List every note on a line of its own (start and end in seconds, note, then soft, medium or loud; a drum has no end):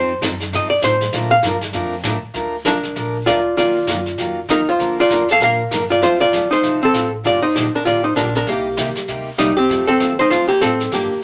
0.00 0.21 F2 medium
0.00 0.11 F3 medium
0.00 0.12 C4 medium
0.00 0.12 D#4 medium
0.00 0.12 A4 medium
0.00 0.21 C5 medium
0.21 0.51 F#2 loud
0.21 0.33 F3 medium
0.21 0.33 C4 medium
0.21 0.33 D#4 medium
0.21 0.33 A4 medium
0.21 snare medium
0.21 hi-hat pedal medium
0.40 snare soft
0.52 0.82 G2 medium
0.52 0.72 F3 medium
0.52 0.72 C4 medium
0.52 0.73 D#4 medium
0.52 0.73 A4 medium
0.52 0.70 D#5 medium
0.52 brush sweep soft
0.52 snare medium
0.70 0.82 D5 medium
0.82 1.12 A2 medium
0.82 0.94 F3 medium
0.82 0.94 C4 medium
0.82 0.94 D#4 medium
0.82 0.94 A4 medium
0.82 1.29 C5 loud
0.82 snare medium
0.82 hi-hat pedal medium
1.01 snare soft
1.13 1.43 A#2 medium
1.13 1.33 F3 medium
1.13 1.33 A3 medium
1.13 1.33 D4 medium
1.13 1.33 F4 medium
1.13 1.33 A#4 medium
1.13 brush sweep soft
1.13 snare medium
1.31 1.60 F5 loud
1.43 1.73 G2 loud
1.43 1.55 F3 medium
1.43 1.55 A3 medium
1.43 1.55 D4 medium
1.43 1.55 F4 medium
1.43 1.55 A#4 medium
1.43 snare medium
1.43 hi-hat pedal medium
1.61 snare soft
1.73 2.03 F2 loud
1.73 1.94 F3 medium
1.73 1.94 A3 medium
1.73 1.94 D4 medium
1.73 1.94 F4 medium
1.73 1.94 A#4 medium
1.73 brush sweep soft
1.73 snare medium
2.03 2.21 A2 loud
2.03 2.15 F3 medium
2.03 2.15 A3 medium
2.03 2.15 D4 medium
2.03 2.16 F4 medium
2.03 2.16 A#4 medium
2.03 snare medium
2.03 hi-hat pedal medium
2.22 muted upright bass stroke soft
2.34 2.64 D2 medium
2.34 2.54 F3 medium
2.34 2.54 A3 medium
2.34 2.55 D4 medium
2.34 2.55 F4 medium
2.34 2.55 A#4 medium
2.34 brush sweep soft
2.34 snare soft
2.65 2.95 C2 medium
2.65 2.76 F3 medium
2.65 2.77 A3 medium
2.65 2.77 D4 medium
2.65 3.23 D4 medium
2.65 2.77 F4 medium
2.65 3.29 A#4 medium
2.65 2.77 A#4 medium
2.65 snare medium
2.65 hi-hat pedal medium
2.83 snare soft
2.96 3.25 A#1 medium
2.96 3.16 F3 medium
2.96 3.16 A3 medium
2.96 3.16 D4 medium
2.96 3.16 F4 medium
2.96 3.16 A#4 medium
2.96 brush sweep soft
2.96 snare soft
3.26 3.56 D2 medium
3.26 3.38 F3 medium
3.26 3.38 A3 medium
3.26 3.38 D4 medium
3.26 3.55 F4 medium
3.26 3.38 F4 medium
3.26 3.38 A#4 medium
3.26 3.57 D5 loud
3.26 snare medium
3.26 hi-hat pedal medium
3.56 3.87 D#2 medium
3.56 3.77 D#3 medium
3.56 3.77 F#3 medium
3.56 3.77 A#3 medium
3.56 3.77 F4 medium
3.56 4.45 F4 medium
3.56 4.52 D5 medium
3.56 brush sweep soft
3.56 snare soft
3.87 4.17 F#2 loud
3.87 3.98 D#3 medium
3.87 3.98 F#3 medium
3.87 3.99 A#3 medium
3.87 3.99 F4 medium
3.87 snare medium
3.87 hi-hat pedal medium
4.06 snare soft
4.18 4.47 F2 medium
4.18 4.38 D#3 medium
4.18 4.38 F#3 medium
4.18 4.39 A#3 medium
4.18 4.39 F4 medium
4.18 brush sweep soft
4.18 snare soft
4.48 4.78 D#2 medium
4.48 4.60 D#3 medium
4.48 4.60 F#3 medium
4.48 4.60 A#3 medium
4.48 4.67 D#4 medium
4.48 4.60 F4 medium
4.48 4.69 A#4 medium
4.48 snare medium
4.48 hi-hat pedal medium
4.69 4.96 F4 medium
4.69 4.99 C5 loud
4.79 5.08 D2 medium
4.79 4.99 D3 medium
4.79 4.99 F3 medium
4.79 4.99 A#3 medium
4.79 4.99 D4 medium
4.79 4.99 A#4 medium
4.79 brush sweep soft
4.79 snare soft
5.00 5.27 F4 medium
5.00 5.31 D5 loud
5.09 5.39 F2 medium
5.09 5.21 D3 medium
5.09 5.21 F3 medium
5.09 5.21 A#3 medium
5.09 5.21 D4 medium
5.09 5.21 A#4 medium
5.09 snare medium
5.09 hi-hat pedal medium
5.28 5.41 A4 medium
5.28 5.42 F5 loud
5.28 snare soft
5.39 5.69 A#2 medium
5.39 5.60 D3 medium
5.39 5.60 F3 medium
5.39 5.61 A#3 medium
5.39 5.61 D4 medium
5.39 5.61 A#4 medium
5.39 5.87 A#4 medium
5.39 brush sweep soft
5.39 snare soft
5.44 5.88 F5 loud
5.70 6.00 G2 medium
5.70 5.82 D3 medium
5.70 5.82 F3 medium
5.70 5.82 A#3 medium
5.70 5.82 D4 medium
5.70 5.83 A#4 medium
5.70 snare medium
5.70 hi-hat pedal medium
5.90 6.01 F4 medium
5.90 6.03 D5 medium
6.01 6.31 F2 medium
6.01 6.21 F3 medium
6.01 6.22 A3 medium
6.01 6.22 C4 medium
6.01 6.22 F4 medium
6.01 6.19 F4 medium
6.01 6.22 A4 medium
6.01 6.21 C5 medium
6.01 brush sweep medium
6.01 snare soft
6.20 6.49 F4 medium
6.20 6.49 D5 loud
6.32 6.62 D2 medium
6.32 6.43 F3 medium
6.32 6.43 A3 medium
6.32 6.43 C4 medium
6.32 6.43 F4 medium
6.32 6.44 A4 medium
6.32 snare medium
6.32 hi-hat pedal medium
6.51 6.79 D#4 medium
6.51 6.83 C5 medium
6.51 snare soft
6.62 6.93 C2 medium
6.62 6.83 F3 medium
6.62 6.83 A3 medium
6.62 6.83 C4 medium
6.62 6.83 F4 medium
6.62 6.83 A4 medium
6.62 brush sweep soft
6.62 snare soft
6.83 7.11 C4 medium
6.83 7.12 A4 medium
6.93 7.23 A1 medium
6.93 7.04 F3 medium
6.93 7.05 A3 medium
6.93 7.05 C4 medium
6.93 7.05 F4 medium
6.93 7.05 A4 medium
6.93 snare medium
6.93 hi-hat pedal medium
7.24 7.42 G1 medium
7.24 7.44 D3 medium
7.24 7.44 F3 medium
7.24 7.44 A#3 medium
7.24 7.44 D4 medium
7.24 7.42 F4 medium
7.24 7.44 G4 medium
7.24 7.43 D5 loud
7.24 brush sweep medium
7.24 snare soft
7.42 7.71 D#4 medium
7.42 7.74 C5 medium
7.42 muted upright bass stroke soft
7.54 7.72 A#1 medium
7.54 7.66 D3 medium
7.54 7.66 F3 medium
7.54 7.66 A#3 medium
7.54 7.66 D4 medium
7.54 7.66 G4 medium
7.54 snare medium
7.54 hi-hat pedal medium
7.73 7.85 D4 medium
7.73 7.86 A#4 medium
7.73 muted upright bass stroke soft
7.85 8.15 A1 medium
7.85 8.06 D3 medium
7.85 8.06 F3 medium
7.85 8.06 A#3 medium
7.85 8.06 D4 medium
7.85 8.03 F4 medium
7.85 8.06 G4 medium
7.85 8.05 D5 medium
7.85 brush sweep soft
7.85 snare soft
8.04 8.15 D#4 medium
8.04 8.17 C5 medium
8.16 8.46 A#1 medium
8.16 8.27 D3 medium
8.16 8.27 F3 medium
8.16 8.27 A#3 medium
8.16 8.33 D4 medium
8.16 8.28 D4 medium
8.16 8.28 G4 medium
8.16 8.34 A#4 medium
8.16 snare medium
8.16 hi-hat pedal medium
8.35 8.47 D4 medium
8.35 8.49 A#4 medium
8.35 snare soft
8.47 8.76 C2 medium
8.47 8.67 C3 medium
8.47 8.67 G3 medium
8.47 8.67 A#3 medium
8.47 9.05 A#3 medium
8.47 8.67 D#4 medium
8.47 8.67 G4 medium
8.47 9.09 G4 medium
8.47 brush sweep soft
8.47 snare soft
8.77 8.95 D#2 medium
8.77 8.88 C3 medium
8.77 8.88 G3 medium
8.77 8.88 A#3 medium
8.77 8.88 D#4 medium
8.77 8.89 G4 medium
8.77 snare medium
8.77 hi-hat pedal soft
8.95 muted upright bass stroke soft
8.95 snare soft
9.08 9.38 D2 medium
9.08 9.28 C3 medium
9.08 9.28 G3 medium
9.08 9.28 A#3 medium
9.08 9.28 D#4 medium
9.08 9.29 G4 medium
9.08 brush sweep soft
9.08 snare soft
9.38 9.68 C2 medium
9.38 9.49 C3 medium
9.38 9.49 G3 medium
9.38 9.56 G3 medium
9.38 9.50 A#3 medium
9.38 9.58 D#4 medium
9.38 9.50 D#4 medium
9.38 9.50 G4 medium
9.38 snare medium
9.38 hi-hat pedal medium
9.57 9.86 C4 medium
9.57 9.89 G4 medium
9.69 9.99 F2 medium
9.69 9.89 F3 medium
9.69 9.89 A3 medium
9.69 9.90 C4 medium
9.69 9.90 F4 medium
9.69 9.90 A4 medium
9.69 brush sweep soft
9.69 snare soft
9.87 10.17 C4 medium
9.87 10.16 A4 loud
10.00 10.30 D#2 medium
10.00 10.11 F3 medium
10.00 10.11 A3 medium
10.00 10.11 C4 medium
10.00 10.11 F4 medium
10.00 10.12 A4 medium
10.00 snare medium
10.00 hi-hat pedal medium
10.19 10.31 D#4 medium
10.19 10.29 C5 loud
10.30 10.60 F2 medium
10.30 10.51 F3 medium
10.30 10.51 A3 medium
10.30 10.51 C4 medium
10.30 10.48 F4 medium
10.30 10.51 F4 medium
10.30 10.51 A4 medium
10.30 10.50 C5 medium
10.30 brush sweep soft
10.30 snare soft
10.48 10.61 A#3 medium
10.48 10.61 G4 loud
10.60 10.91 A2 medium
10.60 10.72 F3 medium
10.60 10.72 A3 medium
10.60 10.90 C4 medium
10.60 10.72 C4 medium
10.60 10.73 F4 medium
10.60 10.93 A4 medium
10.60 10.73 A4 medium
10.60 snare medium
10.60 hi-hat pedal medium
10.80 snare soft
10.92 11.09 G2 medium
10.92 11.12 D3 medium
10.92 11.12 F3 medium
10.92 11.12 A#3 medium
10.92 11.23 A#3 medium
10.92 11.12 D4 medium
10.92 11.23 G4 medium
10.92 11.13 G4 medium
10.92 brush sweep soft
10.92 snare medium
11.11 muted upright bass stroke soft